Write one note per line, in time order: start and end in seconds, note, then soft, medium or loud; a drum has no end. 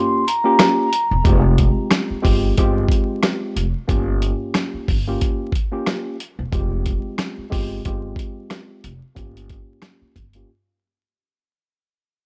0.00 0.23 A#3 loud
0.00 0.23 C#4 medium
0.00 0.24 F4 medium
0.00 0.24 G4 loud
0.00 0.24 C6 medium
0.28 1.22 A#5 medium
0.28 closed hi-hat medium
0.44 0.88 A#3 loud
0.44 0.88 C#4 medium
0.44 0.89 F4 medium
0.44 0.89 G4 loud
0.59 cross-stick medium
0.59 snare loud
0.59 closed hi-hat medium
0.93 closed hi-hat medium
1.11 1.22 E1 medium
1.24 1.66 F1 loud
1.24 2.17 G#3 medium
1.24 2.17 C4 medium
1.24 2.17 F4 medium
1.24 2.18 G4 loud
1.24 kick loud
1.24 closed hi-hat medium
1.58 kick loud
1.58 closed hi-hat medium
1.91 cross-stick medium
1.91 snare loud
1.91 closed hi-hat medium
2.10 muted upright bass stroke medium
2.22 2.51 G1 medium
2.22 2.54 G#3 medium
2.22 2.54 C4 medium
2.22 2.54 F4 medium
2.22 2.55 G4 loud
2.22 kick medium
2.22 open hi-hat medium
2.57 2.84 G1 medium
2.57 3.64 G#3 medium
2.57 3.65 C4 medium
2.57 3.65 F4 medium
2.57 3.65 G4 loud
2.57 kick medium
2.57 closed hi-hat loud
2.89 kick loud
2.89 closed hi-hat medium
3.23 cross-stick medium
3.23 snare loud
3.23 closed hi-hat medium
3.56 3.71 F1 medium
3.56 closed hi-hat medium
3.87 4.30 G1 loud
3.87 4.95 A#3 medium
3.87 4.96 C#4 medium
3.87 4.96 F4 medium
3.87 4.96 G4 loud
3.87 kick loud
3.87 closed hi-hat loud
4.22 closed hi-hat medium
4.54 cross-stick medium
4.54 snare loud
4.54 closed hi-hat medium
4.74 muted upright bass stroke soft
4.88 5.14 G1 loud
4.88 kick medium
4.88 open hi-hat medium
5.07 5.51 A#3 loud
5.07 5.51 C#4 medium
5.07 5.51 F4 medium
5.07 5.51 G4 loud
5.21 kick medium
5.21 closed hi-hat medium
5.52 kick loud
5.52 closed hi-hat medium
5.71 6.16 A#3 medium
5.71 6.16 C#4 medium
5.71 6.16 F4 medium
5.71 6.17 G4 loud
5.86 cross-stick medium
5.86 snare loud
5.86 closed hi-hat medium
6.20 closed hi-hat medium
6.39 6.50 E1 medium
6.52 6.94 F1 loud
6.52 7.44 G#3 medium
6.52 7.45 C4 medium
6.52 7.45 F4 medium
6.52 7.45 G4 loud
6.52 kick loud
6.52 closed hi-hat medium
6.86 kick medium
6.86 closed hi-hat medium
7.18 cross-stick medium
7.18 snare loud
7.18 closed hi-hat medium
7.38 muted upright bass stroke soft
7.50 7.78 G1 medium
7.50 7.81 G#3 medium
7.50 7.82 C4 medium
7.50 7.82 F4 medium
7.50 7.82 G4 loud
7.50 kick medium
7.50 open hi-hat medium
7.85 8.11 G1 medium
7.85 8.92 G#3 medium
7.85 8.92 C4 medium
7.85 8.92 F4 medium
7.85 8.93 G4 loud
7.85 kick medium
7.85 closed hi-hat medium
8.16 kick loud
8.16 closed hi-hat medium
8.50 cross-stick medium
8.50 snare loud
8.50 closed hi-hat medium
8.84 8.99 F1 medium
8.84 closed hi-hat medium
9.15 9.58 G1 loud
9.15 10.23 A#3 medium
9.15 10.23 C#4 medium
9.15 10.23 F4 medium
9.15 10.24 G4 loud
9.15 kick loud
9.15 closed hi-hat medium
9.37 closed hi-hat medium
9.49 kick medium
9.49 closed hi-hat medium
9.82 cross-stick medium
9.82 snare loud
9.82 closed hi-hat medium
10.02 muted upright bass stroke soft
10.16 10.42 G1 medium
10.16 kick medium
10.16 closed hi-hat medium
10.34 10.49 A#3 medium
10.34 10.49 C#4 medium
10.34 10.49 F4 medium
10.34 10.49 G4 medium
10.34 closed hi-hat medium